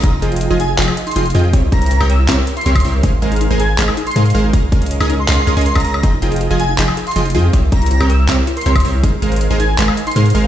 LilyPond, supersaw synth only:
\new Staff \with { instrumentName = "Supersaw synth" } { \time 4/4 \key f \minor \tempo 4 = 160 <f f' aes' ees'' g''>16 r16 <f f' aes' ees'' g''>8. <f f' aes' ees'' aes''>16 r8 <f f' aes' ees'' g''>16 r8. <f f' aes' ees'' g''>16 r16 <f f' aes' ees'' g''>8 | <c' g' bes' des'' e''>16 r16 <c' g' bes' des'' e''>8. <c' g' bes' des'' g''>16 r8 <c' g' bes' des'' e''>16 r8. <c' g' bes' des'' e''>16 r16 <c' g' bes' des'' e''>8 | <aes aes' bes' c'' f''>16 r16 <aes aes' bes' c'' f''>8. <aes aes' bes' c'' aes''>16 r8 <aes aes' bes' c'' f''>16 r8. <aes aes' bes' c'' f''>16 r16 <aes aes' bes' c'' f''>8 | <des' bes' ees'' f''>16 r16 <des' aes' bes' ees'' f''>8. <des' aes' bes' ees'' aes''>16 r8 <des' aes' bes' ees'' f''>16 r16 <des' aes' bes' ees'' f''>16 <des' aes' bes' ees'' aes''>16 r16 <des' aes' bes' ees'' f''>8. |
<f f' aes' ees'' g''>16 r16 <f f' aes' ees'' g''>8. <f f' aes' ees'' aes''>16 r8 <f f' aes' ees'' g''>16 r8. <f f' aes' ees'' g''>16 r16 <f f' aes' ees'' g''>8 | <c' g' bes' des'' e''>16 r16 <c' g' bes' des'' e''>8. <c' g' bes' des'' g''>16 r8 <c' g' bes' des'' e''>16 r8. <c' g' bes' des'' e''>16 r16 <c' g' bes' des'' e''>8 | <aes aes' bes' c'' f''>16 r16 <aes aes' bes' c'' f''>8. <aes aes' bes' c'' aes''>16 r8 <aes aes' bes' c'' f''>16 r8. <aes aes' bes' c'' f''>16 r16 <aes aes' bes' c'' f''>8 | }